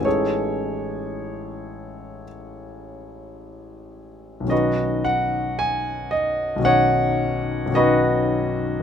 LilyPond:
<<
  \new Staff \with { instrumentName = "Grand piano" } { \time 4/4 \key a \lydian \tempo 4 = 54 <gis' a' cis''>2 r2 | <fis' b' dis''>8 fis''8 gis''8 dis''8 <cis'' dis'' fis''>4 <fis' b' dis''>4 | }
  \new Staff \with { instrumentName = "Grand piano" } { \clef bass \time 4/4 \key a \lydian <a,, e gis cis' dis'>1 | <b,, dis fis cis' dis'>2 <b,, dis fis cis' dis'>4 <b,, dis fis cis' dis'>4 | }
>>